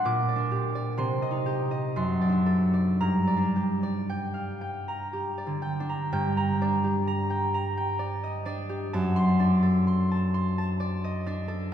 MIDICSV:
0, 0, Header, 1, 2, 480
1, 0, Start_track
1, 0, Key_signature, -2, "minor"
1, 0, Tempo, 952381
1, 27, Time_signature, 3, 2, 24, 8
1, 987, Tempo, 1050788
1, 2427, Tempo, 1011804
1, 2907, Tempo, 931677
1, 5800, End_track
2, 0, Start_track
2, 0, Title_t, "Harp"
2, 0, Program_c, 0, 46
2, 0, Note_on_c, 0, 62, 55
2, 0, Note_on_c, 0, 74, 57
2, 25, Note_on_c, 0, 46, 76
2, 28, Note_on_c, 0, 86, 86
2, 138, Note_off_c, 0, 74, 0
2, 144, Note_on_c, 0, 74, 55
2, 174, Note_off_c, 0, 62, 0
2, 180, Note_on_c, 0, 62, 52
2, 259, Note_on_c, 0, 67, 58
2, 373, Note_off_c, 0, 74, 0
2, 379, Note_on_c, 0, 74, 57
2, 492, Note_on_c, 0, 48, 69
2, 494, Note_on_c, 0, 84, 79
2, 516, Note_off_c, 0, 62, 0
2, 517, Note_off_c, 0, 46, 0
2, 518, Note_off_c, 0, 74, 0
2, 519, Note_off_c, 0, 86, 0
2, 616, Note_on_c, 0, 75, 56
2, 660, Note_on_c, 0, 63, 50
2, 729, Note_off_c, 0, 67, 0
2, 735, Note_on_c, 0, 67, 59
2, 856, Note_off_c, 0, 75, 0
2, 862, Note_on_c, 0, 75, 54
2, 984, Note_off_c, 0, 84, 0
2, 988, Note_on_c, 0, 42, 60
2, 990, Note_on_c, 0, 84, 67
2, 1002, Note_off_c, 0, 48, 0
2, 1003, Note_off_c, 0, 67, 0
2, 1005, Note_off_c, 0, 63, 0
2, 1005, Note_off_c, 0, 75, 0
2, 1104, Note_on_c, 0, 74, 52
2, 1138, Note_on_c, 0, 62, 50
2, 1217, Note_on_c, 0, 69, 58
2, 1337, Note_off_c, 0, 74, 0
2, 1343, Note_on_c, 0, 74, 54
2, 1465, Note_on_c, 0, 43, 59
2, 1465, Note_on_c, 0, 82, 70
2, 1480, Note_off_c, 0, 69, 0
2, 1482, Note_off_c, 0, 42, 0
2, 1483, Note_off_c, 0, 84, 0
2, 1582, Note_off_c, 0, 74, 0
2, 1588, Note_on_c, 0, 74, 47
2, 1625, Note_off_c, 0, 62, 0
2, 1630, Note_on_c, 0, 62, 45
2, 1718, Note_on_c, 0, 67, 50
2, 1836, Note_off_c, 0, 74, 0
2, 1841, Note_on_c, 0, 74, 49
2, 1963, Note_on_c, 0, 79, 57
2, 2074, Note_on_c, 0, 77, 43
2, 2194, Note_off_c, 0, 79, 0
2, 2199, Note_on_c, 0, 79, 56
2, 2276, Note_off_c, 0, 77, 0
2, 2316, Note_off_c, 0, 82, 0
2, 2322, Note_on_c, 0, 82, 52
2, 2430, Note_off_c, 0, 67, 0
2, 2436, Note_on_c, 0, 67, 45
2, 2548, Note_off_c, 0, 74, 0
2, 2554, Note_on_c, 0, 74, 49
2, 2596, Note_on_c, 0, 50, 43
2, 2663, Note_off_c, 0, 79, 0
2, 2668, Note_on_c, 0, 79, 55
2, 2749, Note_off_c, 0, 62, 0
2, 2754, Note_on_c, 0, 62, 50
2, 2792, Note_off_c, 0, 82, 0
2, 2798, Note_on_c, 0, 82, 53
2, 2902, Note_off_c, 0, 79, 0
2, 2904, Note_off_c, 0, 43, 0
2, 2908, Note_on_c, 0, 43, 70
2, 2910, Note_on_c, 0, 79, 65
2, 2930, Note_off_c, 0, 50, 0
2, 3029, Note_off_c, 0, 82, 0
2, 3035, Note_on_c, 0, 82, 76
2, 3154, Note_off_c, 0, 74, 0
2, 3156, Note_off_c, 0, 62, 0
2, 3161, Note_on_c, 0, 62, 55
2, 3162, Note_on_c, 0, 74, 59
2, 3270, Note_off_c, 0, 67, 0
2, 3276, Note_on_c, 0, 67, 53
2, 3391, Note_off_c, 0, 82, 0
2, 3398, Note_on_c, 0, 82, 63
2, 3508, Note_off_c, 0, 79, 0
2, 3514, Note_on_c, 0, 79, 57
2, 3632, Note_off_c, 0, 82, 0
2, 3638, Note_on_c, 0, 82, 61
2, 3752, Note_off_c, 0, 79, 0
2, 3758, Note_on_c, 0, 79, 61
2, 3863, Note_off_c, 0, 74, 0
2, 3870, Note_on_c, 0, 74, 53
2, 3996, Note_on_c, 0, 75, 52
2, 4103, Note_off_c, 0, 62, 0
2, 4103, Note_off_c, 0, 74, 0
2, 4108, Note_on_c, 0, 62, 56
2, 4111, Note_on_c, 0, 74, 60
2, 4199, Note_off_c, 0, 75, 0
2, 4225, Note_off_c, 0, 67, 0
2, 4231, Note_on_c, 0, 67, 58
2, 4355, Note_on_c, 0, 81, 67
2, 4357, Note_on_c, 0, 42, 73
2, 4372, Note_off_c, 0, 67, 0
2, 4375, Note_off_c, 0, 43, 0
2, 4375, Note_off_c, 0, 79, 0
2, 4375, Note_off_c, 0, 82, 0
2, 4472, Note_on_c, 0, 84, 75
2, 4587, Note_off_c, 0, 74, 0
2, 4588, Note_off_c, 0, 62, 0
2, 4592, Note_on_c, 0, 62, 57
2, 4595, Note_on_c, 0, 74, 58
2, 4711, Note_on_c, 0, 69, 57
2, 4832, Note_off_c, 0, 84, 0
2, 4838, Note_on_c, 0, 84, 61
2, 4958, Note_off_c, 0, 81, 0
2, 4964, Note_on_c, 0, 81, 59
2, 5075, Note_off_c, 0, 84, 0
2, 5081, Note_on_c, 0, 84, 64
2, 5198, Note_off_c, 0, 81, 0
2, 5204, Note_on_c, 0, 81, 61
2, 5311, Note_off_c, 0, 74, 0
2, 5317, Note_on_c, 0, 74, 54
2, 5442, Note_on_c, 0, 75, 50
2, 5549, Note_off_c, 0, 74, 0
2, 5551, Note_off_c, 0, 62, 0
2, 5556, Note_on_c, 0, 62, 59
2, 5557, Note_on_c, 0, 74, 63
2, 5638, Note_off_c, 0, 75, 0
2, 5662, Note_off_c, 0, 69, 0
2, 5668, Note_on_c, 0, 69, 60
2, 5800, Note_off_c, 0, 42, 0
2, 5800, Note_off_c, 0, 62, 0
2, 5800, Note_off_c, 0, 69, 0
2, 5800, Note_off_c, 0, 74, 0
2, 5800, Note_off_c, 0, 81, 0
2, 5800, Note_off_c, 0, 84, 0
2, 5800, End_track
0, 0, End_of_file